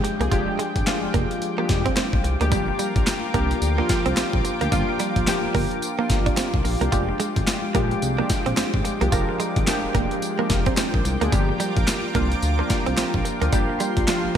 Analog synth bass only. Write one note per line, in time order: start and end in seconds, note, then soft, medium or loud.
0.20 0.28 C2 medium
0.32 0.43 F1 loud
0.76 0.83 G#1 medium
1.03 1.08 F1 medium
1.14 1.26 F1 loud
1.69 1.89 F1 medium
2.13 2.21 A#1 medium
2.24 2.36 C2 medium
2.41 2.53 D2 medium
2.52 2.71 G1 loud
2.96 3.04 A#1 medium
3.34 3.54 C2 medium
3.62 3.81 D2 medium
4.06 4.14 C2 medium
4.33 4.41 A#1 medium
4.61 4.69 D2 loud
4.72 4.84 G1 loud
5.16 5.24 A#1 medium
5.44 5.48 G1 medium
5.55 5.66 G1 medium
6.10 6.29 G1 medium
6.54 6.61 C2 loud
6.65 6.76 A#1 medium
6.81 6.89 C2 loud
6.92 7.12 F1 loud
7.36 7.44 G#1 medium
7.75 7.94 A#1 loud
8.02 8.22 C2 loud
8.46 8.54 A#1 medium
8.57 8.64 G#1 soft
8.74 8.82 G#1 medium
9.02 9.09 C2 medium
9.12 9.24 F1 loud
9.56 9.64 G#1 medium
9.84 9.88 F1 soft
9.95 10.07 F1 medium
10.50 10.69 F1 medium
10.94 11.02 A#1 loud
11.05 11.17 C2 medium
11.22 11.29 D2 medium
11.33 11.52 G1 loud
11.77 11.84 A#1 medium
12.15 12.35 C2 loud
12.43 12.62 D2 loud
12.87 12.94 C2 medium
13.14 13.22 A#1 medium
13.42 13.50 D2 medium
13.53 13.64 G1 loud
13.97 14.04 A#1 medium
14.24 14.29 G1 medium